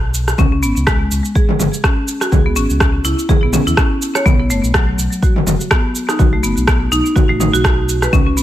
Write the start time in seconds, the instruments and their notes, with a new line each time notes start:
Already playing: analog synth bass B1
0.14 cabasa
0.28 cross-stick, cabasa
0.38 analog synth bass C#2, marimba C#4, kick, mid tom, cabasa
0.52 marimba C#4
0.62 analog synth bass G#1, marimba B3, cabasa
0.77 analog synth bass C#2, cabasa
0.87 marimba G#3, kick, cross-stick, cabasa
1.11 analog synth bass C#2, cabasa
1.25 cabasa
1.35 marimba G#4, kick, cabasa
1.49 mid tom
1.60 analog synth bass G#1, mid tom, cabasa
1.74 cabasa
1.84 marimba C#4, kick, cross-stick, cabasa
2.08 cabasa
2.21 marimba F#4, cross-stick, cabasa
2.32 analog synth bass C#2, marimba G#4, kick, mid tom, cabasa
2.46 marimba B3
2.56 analog synth bass G#1, marimba C#4, cabasa
2.70 analog synth bass C#2, cabasa
2.80 marimba C#4, kick, cross-stick, cabasa
3.05 analog synth bass C#2, marimba E4, cabasa
3.19 cabasa
3.29 marimba G#4, kick, mid tom, cabasa
3.43 analog synth bass B1, marimba B3
3.53 marimba C#4, mid tom, cabasa
3.67 analog synth bass E2, marimba E4, cabasa
3.77 marimba C#4, kick, cross-stick, cabasa
4.02 cabasa
4.15 marimba C#5, cross-stick, cabasa
4.26 analog synth bass B1, marimba B3, kick, mid tom, cabasa
4.39 marimba B3
4.50 analog synth bass F#1, marimba A3, cabasa
4.64 analog synth bass B1, cabasa
4.74 marimba F#3, kick, cross-stick, cabasa
4.98 analog synth bass B1, cabasa
5.12 cabasa
5.23 marimba F#4, kick, cabasa
5.36 mid tom
5.47 analog synth bass F#1, mid tom, cabasa
5.61 cabasa
5.71 marimba B3, kick, cross-stick, cabasa
5.95 cabasa
6.09 marimba D#4, cross-stick, cabasa
6.19 analog synth bass B1, marimba F#4, kick, mid tom, cabasa
6.33 marimba A3
6.43 analog synth bass F#1, marimba B3, cabasa
6.57 analog synth bass B1, cabasa
6.67 marimba B3, kick, cross-stick, cabasa
6.92 analog synth bass B1, marimba D#4, cabasa
7.06 cabasa
7.16 marimba F#4, kick, mid tom, cabasa
7.29 analog synth bass A1, marimba A3
7.40 analog synth bass A1, marimba D#4, mid tom, cabasa
7.54 analog synth bass B1, marimba F#4, cabasa
7.64 marimba F#4, kick, cross-stick, cabasa
7.89 cabasa
8.02 marimba B4, cross-stick, cabasa
8.13 marimba C#4, kick, mid tom, cabasa
8.27 marimba C#4
8.37 analog synth bass G#1, marimba B3, cabasa